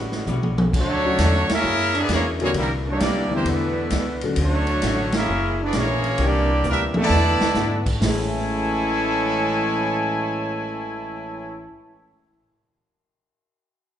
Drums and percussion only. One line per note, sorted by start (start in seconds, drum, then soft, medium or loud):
0.12 snare medium
0.27 hi-hat pedal medium
0.27 mid tom medium
0.43 mid tom medium
0.58 mid tom loud
0.73 kick medium
0.73 crash medium
1.19 snare medium
1.19 hi-hat pedal medium
1.19 ride medium
1.49 snare medium
1.49 ride medium
1.95 ride medium
2.09 snare medium
2.09 hi-hat pedal medium
2.09 ride medium
2.40 ride medium
2.54 ride medium
3.00 snare medium
3.00 hi-hat pedal medium
3.00 ride medium
3.46 ride medium
3.90 snare medium
3.90 hi-hat pedal medium
3.90 ride medium
4.21 ride medium
4.36 ride medium
4.67 ride medium
4.82 snare medium
4.82 hi-hat pedal medium
4.82 ride medium
5.12 snare medium
5.12 ride medium
5.73 snare medium
5.73 hi-hat pedal medium
5.73 ride medium
6.04 ride medium
6.18 ride medium
6.63 hi-hat pedal medium
6.63 high tom medium
6.94 mid tom medium
7.10 snare medium
7.41 snare loud
7.55 snare medium
7.55 hi-hat pedal medium
7.86 kick medium
7.86 crash medium
8.02 snare loud
8.02 open hi-hat medium